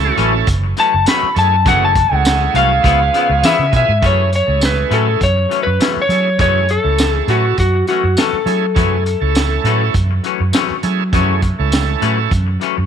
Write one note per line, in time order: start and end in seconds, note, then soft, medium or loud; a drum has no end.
0.00 0.49 A3 medium
0.00 0.49 C#4 medium
0.00 0.49 E4 medium
0.00 0.16 A4 loud
0.00 0.49 A4 loud
0.00 muted clean electric guitar stroke soft
0.16 0.42 A1 medium
0.16 0.34 F#2 loud
0.16 0.34 E3 medium
0.16 0.33 A3 loud
0.16 0.32 C#4 loud
0.16 closed hi-hat medium
0.33 muted clean electric guitar stroke soft
0.47 0.72 F#1 loud
0.47 kick medium
0.47 closed hi-hat medium
0.64 muted clean electric guitar stroke soft
0.77 0.93 F#2 medium
0.77 0.94 E3 medium
0.77 0.93 A3 medium
0.77 0.92 C#4 medium
0.77 1.07 A5 loud
0.77 closed hi-hat medium
0.94 1.05 F#1 medium
0.94 muted clean electric guitar stroke soft
1.06 1.26 F#2 medium
1.06 1.26 E3 medium
1.06 1.27 A3 medium
1.06 1.27 C#4 medium
1.06 1.37 B5 medium
1.06 snare loud
1.06 closed hi-hat medium
1.06 tambourine loud
1.23 muted fingered electric bass stroke soft
1.35 1.67 F#2 loud
1.35 1.56 A3 medium
1.35 1.56 C#4 medium
1.35 1.56 E4 medium
1.35 1.56 G#4 medium
1.35 1.66 A5 medium
1.35 muted clean electric guitar stroke soft
1.35 closed hi-hat medium
1.53 muted clean electric guitar stroke soft
1.65 2.04 F#1 loud
1.65 1.85 F#2 medium
1.65 1.86 E3 medium
1.65 1.94 A3 medium
1.65 1.86 A3 medium
1.65 1.94 C#4 medium
1.65 1.86 C#4 medium
1.65 1.94 E4 medium
1.65 1.94 G#4 medium
1.65 1.83 F#5 medium
1.65 kick loud
1.65 closed hi-hat medium
1.85 2.14 A5 loud
1.95 muted clean electric guitar stroke soft
1.95 kick medium
1.95 closed hi-hat medium
2.11 2.47 C#2 loud
2.11 2.84 A3 medium
2.11 2.82 C#4 medium
2.11 2.84 E4 medium
2.11 2.83 G#4 medium
2.11 2.55 F#5 medium
2.25 muted clean electric guitar stroke soft
2.25 snare loud
2.25 closed hi-hat medium
2.25 tambourine loud
2.41 muted clean electric guitar stroke soft
2.54 2.79 C2 medium
2.54 2.71 F#2 medium
2.54 2.71 E3 medium
2.54 2.70 A3 medium
2.54 2.70 C#4 medium
2.54 3.70 F5 loud
2.54 closed hi-hat medium
2.71 muted clean electric guitar stroke soft
2.83 3.09 C#2 loud
2.83 3.00 C#3 medium
2.83 3.01 F3 medium
2.83 3.56 B3 medium
2.83 3.01 B3 medium
2.83 3.56 C#4 medium
2.83 3.00 E4 medium
2.83 3.56 F4 medium
2.83 3.57 G#4 medium
2.83 kick medium
2.83 closed hi-hat medium
3.01 muted clean electric guitar stroke soft
3.13 3.30 C#3 medium
3.13 3.31 F3 medium
3.13 3.30 B3 medium
3.13 3.30 E4 medium
3.13 closed hi-hat medium
3.29 3.41 C#2 medium
3.29 muted clean electric guitar stroke soft
3.43 3.63 C#3 medium
3.43 3.58 E3 medium
3.43 3.63 F3 medium
3.43 3.64 B3 loud
3.43 3.64 E4 medium
3.43 3.72 E5 loud
3.43 3.99 G#5 medium
3.43 snare loud
3.43 closed hi-hat medium
3.43 tambourine loud
3.59 3.71 C#3 medium
3.72 3.88 B2 medium
3.72 3.92 B3 medium
3.72 3.92 E4 medium
3.72 3.93 F4 medium
3.72 3.93 G#4 loud
3.72 muted clean electric guitar stroke soft
3.72 kick medium
3.72 closed hi-hat medium
3.76 4.05 E5 loud
3.88 4.01 G#2 medium
3.88 muted clean electric guitar stroke medium
4.01 4.21 F#2 medium
4.01 4.40 F#2 loud
4.01 4.21 E3 medium
4.01 4.30 A3 medium
4.01 4.22 A3 medium
4.01 4.30 C#4 medium
4.01 4.22 C#4 medium
4.01 4.31 E4 medium
4.01 4.31 G#4 medium
4.01 kick loud
4.01 closed hi-hat medium
4.06 4.32 C#5 loud
4.32 muted clean electric guitar stroke soft
4.32 closed hi-hat medium
4.36 4.64 C#5 medium
4.47 4.83 C#2 medium
4.47 5.21 A3 medium
4.47 5.21 C#4 medium
4.47 5.21 E4 medium
4.47 5.21 G#4 medium
4.61 muted clean electric guitar stroke soft
4.61 snare loud
4.61 closed hi-hat medium
4.61 tambourine loud
4.65 4.94 B4 medium
4.78 muted clean electric guitar stroke soft
4.90 5.07 F#2 medium
4.90 5.15 A2 medium
4.90 5.07 E3 medium
4.90 5.06 A3 medium
4.90 5.05 C#4 medium
4.90 5.23 A4 medium
4.90 closed hi-hat medium
5.07 muted clean electric guitar stroke soft
5.21 5.45 F#2 medium
5.21 5.63 C#5 loud
5.21 kick medium
5.21 closed hi-hat medium
5.36 muted clean electric guitar stroke soft
5.49 5.66 F#2 medium
5.49 5.66 E3 medium
5.49 5.66 A3 medium
5.49 5.65 C#4 medium
5.49 closed hi-hat medium
5.63 5.78 F#2 medium
5.63 6.03 B4 medium
5.63 muted clean electric guitar stroke soft
5.79 5.99 F#2 medium
5.79 5.99 E3 medium
5.79 6.00 A3 medium
5.79 6.00 C#4 medium
5.79 snare loud
5.79 closed hi-hat medium
5.79 tambourine loud
5.96 muted fingered electric bass stroke soft
6.02 6.40 C#5 medium
6.08 6.40 F#3 medium
6.08 6.29 A3 medium
6.08 6.29 C#4 medium
6.08 6.30 E4 medium
6.08 6.30 G#4 medium
6.08 muted clean electric guitar stroke soft
6.08 closed hi-hat medium
6.24 muted clean electric guitar stroke soft
6.38 6.58 F#2 medium
6.38 6.77 F#2 loud
6.38 6.58 E3 medium
6.38 6.68 A3 medium
6.38 6.59 A3 medium
6.38 6.68 C#4 medium
6.38 6.59 C#4 medium
6.38 6.68 E4 medium
6.38 6.68 G#4 medium
6.38 6.71 C#5 medium
6.38 kick loud
6.38 closed hi-hat medium
6.69 7.14 A4 medium
6.69 muted clean electric guitar stroke soft
6.69 closed hi-hat medium
6.83 7.20 C#2 medium
6.83 7.58 A3 medium
6.83 7.58 C#4 medium
6.83 7.58 E4 medium
6.83 7.58 A4 medium
6.98 muted clean electric guitar stroke soft
6.98 snare loud
6.98 closed hi-hat medium
6.98 tambourine loud
7.14 7.31 G#4 medium
7.14 muted clean electric guitar stroke soft
7.28 7.44 F#2 medium
7.28 7.52 A2 medium
7.28 7.45 E3 medium
7.28 7.45 A3 medium
7.28 7.44 C#4 medium
7.28 7.59 F#4 medium
7.28 closed hi-hat medium
7.45 muted clean electric guitar stroke soft
7.58 7.82 F#2 medium
7.58 7.87 F#4 medium
7.58 kick medium
7.58 closed hi-hat medium
7.74 muted clean electric guitar stroke soft
7.87 8.04 F#2 medium
7.87 8.04 E3 medium
7.87 8.04 A3 medium
7.87 8.03 C#4 medium
7.87 8.18 F#4 medium
7.87 closed hi-hat medium
8.03 8.14 F#2 medium
8.03 muted clean electric guitar stroke soft
8.17 8.36 F#2 medium
8.17 8.36 E3 medium
8.17 8.37 A3 medium
8.17 8.37 C#4 medium
8.17 9.92 A4 medium
8.17 snare loud
8.17 closed hi-hat medium
8.17 tambourine loud
8.33 muted fingered electric bass stroke soft
8.45 8.78 F#3 medium
8.45 8.66 A3 medium
8.45 8.66 C#4 medium
8.45 8.66 E4 medium
8.45 8.67 G#4 medium
8.45 muted clean electric guitar stroke soft
8.45 closed hi-hat medium
8.63 muted clean electric guitar stroke soft
8.75 8.95 F#2 medium
8.75 9.14 F#2 loud
8.75 8.95 E3 medium
8.75 9.04 A3 medium
8.75 8.96 A3 medium
8.75 9.04 C#4 medium
8.75 8.96 C#4 medium
8.75 9.04 E4 medium
8.75 9.04 G#4 medium
8.75 kick loud
8.75 closed hi-hat medium
9.05 muted clean electric guitar stroke soft
9.05 closed hi-hat medium
9.21 9.57 C#2 medium
9.21 9.95 A3 medium
9.21 9.95 C#4 medium
9.21 9.95 E4 medium
9.21 9.95 A4 medium
9.35 muted clean electric guitar stroke soft
9.35 snare loud
9.35 closed hi-hat medium
9.35 tambourine loud
9.52 muted clean electric guitar stroke soft
9.64 9.81 F#2 medium
9.64 9.89 A2 medium
9.64 9.82 E3 medium
9.64 9.82 A3 medium
9.64 9.81 C#4 medium
9.64 closed hi-hat medium
9.82 muted clean electric guitar stroke soft
9.94 10.19 F#2 medium
9.94 kick medium
9.94 closed hi-hat medium
10.11 muted clean electric guitar stroke soft
10.24 10.40 F#2 medium
10.24 10.41 E3 medium
10.24 10.40 A3 medium
10.24 10.39 C#4 medium
10.24 closed hi-hat medium
10.40 10.51 F#2 medium
10.40 muted clean electric guitar stroke soft
10.53 10.72 F#2 medium
10.53 10.73 E3 medium
10.53 10.73 A3 loud
10.53 10.74 C#4 medium
10.53 snare loud
10.53 closed hi-hat medium
10.53 tambourine loud
10.70 muted fingered electric bass stroke soft
10.83 11.14 F#3 medium
10.83 11.03 A3 medium
10.83 11.03 C#4 medium
10.83 11.04 E4 medium
10.83 11.04 G#4 medium
10.83 muted clean electric guitar stroke soft
10.83 closed hi-hat medium
11.00 muted clean electric guitar stroke soft
11.13 11.32 F#2 medium
11.13 11.51 F#2 loud
11.13 11.32 E3 medium
11.13 11.41 A3 medium
11.13 11.33 A3 medium
11.13 11.41 C#4 medium
11.13 11.33 C#4 loud
11.13 11.41 E4 medium
11.13 11.42 G#4 loud
11.13 kick loud
11.13 closed hi-hat medium
11.42 muted clean electric guitar stroke soft
11.42 kick medium
11.42 closed hi-hat medium
11.59 11.94 C#2 medium
11.59 12.32 A3 medium
11.59 12.33 C#4 medium
11.59 12.33 E4 medium
11.59 12.33 A4 medium
11.71 muted clean electric guitar stroke soft
11.71 snare loud
11.71 closed hi-hat medium
11.71 tambourine loud
11.88 muted clean electric guitar stroke soft
12.01 12.18 F#2 medium
12.01 12.26 A2 medium
12.01 12.18 E3 medium
12.01 12.17 A3 medium
12.01 12.16 C#4 loud
12.01 closed hi-hat medium
12.17 muted clean electric guitar stroke soft
12.31 12.56 F#2 medium
12.31 kick medium
12.31 closed hi-hat medium
12.47 muted clean electric guitar stroke soft
12.60 12.77 F#2 medium
12.60 12.77 E3 medium
12.60 12.77 A3 medium
12.60 12.76 C#4 medium
12.60 closed hi-hat medium
12.77 12.86 F#2 medium
12.77 muted clean electric guitar stroke soft